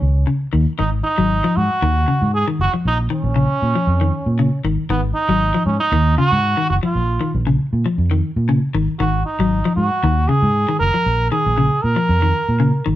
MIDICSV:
0, 0, Header, 1, 5, 480
1, 0, Start_track
1, 0, Tempo, 513699
1, 735, Time_signature, 4, 2, 24, 8
1, 12106, End_track
2, 0, Start_track
2, 0, Title_t, "Trombone"
2, 0, Program_c, 0, 57
2, 0, Note_on_c, 0, 61, 94
2, 252, Note_off_c, 0, 61, 0
2, 734, Note_on_c, 0, 63, 83
2, 842, Note_off_c, 0, 63, 0
2, 966, Note_on_c, 0, 63, 95
2, 1462, Note_on_c, 0, 66, 110
2, 1476, Note_off_c, 0, 63, 0
2, 2181, Note_off_c, 0, 66, 0
2, 2187, Note_on_c, 0, 68, 101
2, 2293, Note_off_c, 0, 68, 0
2, 2438, Note_on_c, 0, 66, 95
2, 2542, Note_off_c, 0, 66, 0
2, 2682, Note_on_c, 0, 63, 94
2, 2785, Note_off_c, 0, 63, 0
2, 2916, Note_on_c, 0, 61, 88
2, 4311, Note_off_c, 0, 61, 0
2, 4575, Note_on_c, 0, 59, 80
2, 4684, Note_off_c, 0, 59, 0
2, 4810, Note_on_c, 0, 63, 102
2, 5261, Note_off_c, 0, 63, 0
2, 5287, Note_on_c, 0, 61, 83
2, 5410, Note_off_c, 0, 61, 0
2, 5417, Note_on_c, 0, 63, 100
2, 5750, Note_off_c, 0, 63, 0
2, 5773, Note_on_c, 0, 66, 125
2, 6222, Note_off_c, 0, 66, 0
2, 6257, Note_on_c, 0, 66, 95
2, 6314, Note_off_c, 0, 66, 0
2, 6400, Note_on_c, 0, 65, 90
2, 6840, Note_off_c, 0, 65, 0
2, 8406, Note_on_c, 0, 66, 85
2, 8635, Note_off_c, 0, 66, 0
2, 8649, Note_on_c, 0, 63, 84
2, 9099, Note_off_c, 0, 63, 0
2, 9123, Note_on_c, 0, 66, 99
2, 9606, Note_on_c, 0, 68, 105
2, 9620, Note_off_c, 0, 66, 0
2, 10083, Note_off_c, 0, 68, 0
2, 10088, Note_on_c, 0, 70, 107
2, 10539, Note_off_c, 0, 70, 0
2, 10573, Note_on_c, 0, 68, 98
2, 11048, Note_on_c, 0, 70, 102
2, 11062, Note_off_c, 0, 68, 0
2, 12012, Note_off_c, 0, 70, 0
2, 12106, End_track
3, 0, Start_track
3, 0, Title_t, "Clean electric guitar"
3, 0, Program_c, 1, 27
3, 252, Note_on_c, 1, 49, 74
3, 431, Note_off_c, 1, 49, 0
3, 493, Note_on_c, 1, 51, 68
3, 671, Note_off_c, 1, 51, 0
3, 736, Note_on_c, 1, 51, 86
3, 914, Note_off_c, 1, 51, 0
3, 1102, Note_on_c, 1, 54, 70
3, 1280, Note_off_c, 1, 54, 0
3, 1347, Note_on_c, 1, 53, 77
3, 1523, Note_off_c, 1, 53, 0
3, 1705, Note_on_c, 1, 51, 78
3, 1880, Note_off_c, 1, 51, 0
3, 1942, Note_on_c, 1, 49, 70
3, 2118, Note_off_c, 1, 49, 0
3, 2313, Note_on_c, 1, 51, 69
3, 2488, Note_off_c, 1, 51, 0
3, 2556, Note_on_c, 1, 53, 62
3, 2729, Note_off_c, 1, 53, 0
3, 2899, Note_on_c, 1, 51, 72
3, 3076, Note_off_c, 1, 51, 0
3, 3137, Note_on_c, 1, 49, 87
3, 3315, Note_off_c, 1, 49, 0
3, 3508, Note_on_c, 1, 53, 67
3, 3685, Note_off_c, 1, 53, 0
3, 3748, Note_on_c, 1, 51, 68
3, 3924, Note_off_c, 1, 51, 0
3, 4103, Note_on_c, 1, 49, 75
3, 4279, Note_off_c, 1, 49, 0
3, 4341, Note_on_c, 1, 51, 75
3, 4518, Note_off_c, 1, 51, 0
3, 4581, Note_on_c, 1, 51, 92
3, 4758, Note_off_c, 1, 51, 0
3, 4943, Note_on_c, 1, 54, 79
3, 5122, Note_off_c, 1, 54, 0
3, 5180, Note_on_c, 1, 53, 77
3, 5360, Note_off_c, 1, 53, 0
3, 5537, Note_on_c, 1, 51, 87
3, 5715, Note_off_c, 1, 51, 0
3, 5777, Note_on_c, 1, 49, 74
3, 5955, Note_off_c, 1, 49, 0
3, 6142, Note_on_c, 1, 51, 71
3, 6321, Note_off_c, 1, 51, 0
3, 6381, Note_on_c, 1, 53, 70
3, 6560, Note_off_c, 1, 53, 0
3, 6734, Note_on_c, 1, 51, 70
3, 6913, Note_off_c, 1, 51, 0
3, 6978, Note_on_c, 1, 49, 89
3, 7156, Note_off_c, 1, 49, 0
3, 7341, Note_on_c, 1, 53, 65
3, 7520, Note_off_c, 1, 53, 0
3, 7579, Note_on_c, 1, 51, 73
3, 7758, Note_off_c, 1, 51, 0
3, 7931, Note_on_c, 1, 49, 85
3, 8111, Note_off_c, 1, 49, 0
3, 8172, Note_on_c, 1, 51, 71
3, 8351, Note_off_c, 1, 51, 0
3, 8410, Note_on_c, 1, 51, 84
3, 8591, Note_off_c, 1, 51, 0
3, 8783, Note_on_c, 1, 54, 75
3, 8961, Note_off_c, 1, 54, 0
3, 9020, Note_on_c, 1, 53, 79
3, 9199, Note_off_c, 1, 53, 0
3, 9378, Note_on_c, 1, 51, 81
3, 9555, Note_off_c, 1, 51, 0
3, 9614, Note_on_c, 1, 49, 75
3, 9793, Note_off_c, 1, 49, 0
3, 9984, Note_on_c, 1, 51, 74
3, 10161, Note_off_c, 1, 51, 0
3, 10223, Note_on_c, 1, 53, 61
3, 10401, Note_off_c, 1, 53, 0
3, 10576, Note_on_c, 1, 51, 72
3, 10754, Note_off_c, 1, 51, 0
3, 10817, Note_on_c, 1, 49, 82
3, 10994, Note_off_c, 1, 49, 0
3, 11178, Note_on_c, 1, 53, 73
3, 11357, Note_off_c, 1, 53, 0
3, 11421, Note_on_c, 1, 51, 68
3, 11599, Note_off_c, 1, 51, 0
3, 11771, Note_on_c, 1, 49, 82
3, 11951, Note_off_c, 1, 49, 0
3, 12014, Note_on_c, 1, 51, 73
3, 12106, Note_off_c, 1, 51, 0
3, 12106, End_track
4, 0, Start_track
4, 0, Title_t, "Fingered electric bass"
4, 0, Program_c, 2, 33
4, 18, Note_on_c, 2, 37, 79
4, 221, Note_off_c, 2, 37, 0
4, 500, Note_on_c, 2, 39, 90
4, 605, Note_off_c, 2, 39, 0
4, 747, Note_on_c, 2, 32, 89
4, 947, Note_off_c, 2, 32, 0
4, 1107, Note_on_c, 2, 32, 89
4, 1310, Note_off_c, 2, 32, 0
4, 1467, Note_on_c, 2, 44, 79
4, 1571, Note_off_c, 2, 44, 0
4, 1703, Note_on_c, 2, 39, 101
4, 1905, Note_off_c, 2, 39, 0
4, 2072, Note_on_c, 2, 44, 90
4, 2273, Note_off_c, 2, 44, 0
4, 2423, Note_on_c, 2, 30, 69
4, 2528, Note_off_c, 2, 30, 0
4, 2666, Note_on_c, 2, 34, 97
4, 2867, Note_off_c, 2, 34, 0
4, 3024, Note_on_c, 2, 34, 91
4, 3229, Note_off_c, 2, 34, 0
4, 3386, Note_on_c, 2, 46, 77
4, 3490, Note_off_c, 2, 46, 0
4, 3619, Note_on_c, 2, 41, 100
4, 3823, Note_off_c, 2, 41, 0
4, 3983, Note_on_c, 2, 46, 89
4, 4188, Note_off_c, 2, 46, 0
4, 4338, Note_on_c, 2, 32, 78
4, 4446, Note_off_c, 2, 32, 0
4, 4574, Note_on_c, 2, 32, 89
4, 4780, Note_off_c, 2, 32, 0
4, 4939, Note_on_c, 2, 32, 94
4, 5146, Note_off_c, 2, 32, 0
4, 5288, Note_on_c, 2, 44, 78
4, 5400, Note_off_c, 2, 44, 0
4, 5530, Note_on_c, 2, 39, 89
4, 5738, Note_off_c, 2, 39, 0
4, 5906, Note_on_c, 2, 44, 87
4, 6110, Note_off_c, 2, 44, 0
4, 6263, Note_on_c, 2, 30, 73
4, 6369, Note_off_c, 2, 30, 0
4, 6498, Note_on_c, 2, 34, 91
4, 6702, Note_off_c, 2, 34, 0
4, 6864, Note_on_c, 2, 34, 93
4, 7069, Note_off_c, 2, 34, 0
4, 7221, Note_on_c, 2, 46, 81
4, 7328, Note_off_c, 2, 46, 0
4, 7457, Note_on_c, 2, 41, 88
4, 7662, Note_off_c, 2, 41, 0
4, 7815, Note_on_c, 2, 46, 84
4, 8023, Note_off_c, 2, 46, 0
4, 8174, Note_on_c, 2, 32, 76
4, 8283, Note_off_c, 2, 32, 0
4, 8411, Note_on_c, 2, 32, 88
4, 8618, Note_off_c, 2, 32, 0
4, 8774, Note_on_c, 2, 32, 86
4, 8982, Note_off_c, 2, 32, 0
4, 9129, Note_on_c, 2, 44, 82
4, 9240, Note_off_c, 2, 44, 0
4, 9375, Note_on_c, 2, 39, 99
4, 9580, Note_off_c, 2, 39, 0
4, 9740, Note_on_c, 2, 44, 91
4, 9945, Note_off_c, 2, 44, 0
4, 10095, Note_on_c, 2, 30, 78
4, 10204, Note_off_c, 2, 30, 0
4, 10337, Note_on_c, 2, 34, 94
4, 10541, Note_off_c, 2, 34, 0
4, 10711, Note_on_c, 2, 34, 89
4, 10912, Note_off_c, 2, 34, 0
4, 11063, Note_on_c, 2, 46, 76
4, 11168, Note_off_c, 2, 46, 0
4, 11299, Note_on_c, 2, 41, 97
4, 11502, Note_off_c, 2, 41, 0
4, 11668, Note_on_c, 2, 46, 83
4, 11870, Note_off_c, 2, 46, 0
4, 12027, Note_on_c, 2, 32, 77
4, 12106, Note_off_c, 2, 32, 0
4, 12106, End_track
5, 0, Start_track
5, 0, Title_t, "Muted fingered electric bass strokes"
5, 630, Note_on_c, 9, 29, 31
5, 723, Note_off_c, 9, 29, 0
5, 2555, Note_on_c, 9, 29, 32
5, 2649, Note_off_c, 9, 29, 0
5, 4461, Note_on_c, 9, 29, 38
5, 4555, Note_off_c, 9, 29, 0
5, 8298, Note_on_c, 9, 29, 35
5, 8392, Note_off_c, 9, 29, 0
5, 12106, End_track
0, 0, End_of_file